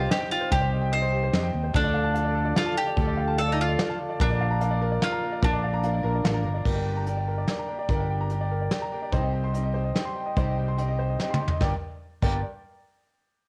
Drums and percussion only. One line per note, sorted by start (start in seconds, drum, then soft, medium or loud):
0.11 snare medium
0.11 closed hi-hat medium
0.52 kick loud
0.52 closed hi-hat medium
0.93 closed hi-hat medium
1.34 snare medium
1.34 closed hi-hat medium
1.74 kick loud
1.74 closed hi-hat medium
2.15 closed hi-hat medium
2.56 snare loud
2.56 closed hi-hat medium
2.97 kick loud
2.97 closed hi-hat medium
3.38 closed hi-hat medium
3.79 snare loud
3.79 closed hi-hat medium
4.20 kick loud
4.20 closed hi-hat medium
4.61 closed hi-hat medium
5.02 snare medium
5.02 closed hi-hat medium
5.43 kick loud
5.43 closed hi-hat medium
5.83 closed hi-hat medium
6.25 snare loud
6.25 closed hi-hat medium
6.65 kick loud
6.65 crash medium
7.06 closed hi-hat medium
7.47 snare medium
7.47 closed hi-hat medium
7.89 kick medium
7.89 closed hi-hat medium
8.30 closed hi-hat medium
8.71 snare medium
8.71 closed hi-hat medium
9.13 kick loud
9.13 closed hi-hat medium
9.54 closed hi-hat medium
9.96 snare medium
9.96 closed hi-hat medium
10.37 kick loud
10.37 closed hi-hat medium
10.78 closed hi-hat medium
11.19 snare medium
11.34 mid tom medium
11.48 floor tom medium
11.61 kick loud
11.61 snare medium
12.23 kick loud
12.23 crash medium